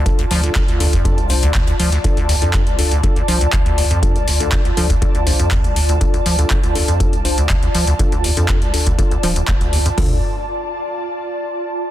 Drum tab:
HH |xxoxxxoxxxoxxxox|xxoxxxoxxxoxxxox|xxoxxxoxxxoxxxox|xxoxxxoxxxoxxxox|
SH |x-x---x-x-x---x-|----------------|----------------|----------------|
CP |----x-------x---|----x-------x---|----x-------x---|----x-------x---|
SD |--o-o-------o--o|----------------|----------------|----------------|
FT |----------------|----------------|----------------|----------------|
BD |o---o--oo---o---|o---o---o---o---|o---o--oo---o---|o---o---o---o---|

HH |xxoxxxoxxxoxxxox|o---------------|
SH |----------------|----------------|
CP |----x-------x---|----------------|
SD |----------------|----------------|
FT |----------------|o---------------|
BD |o---o--oo---o---|o---------------|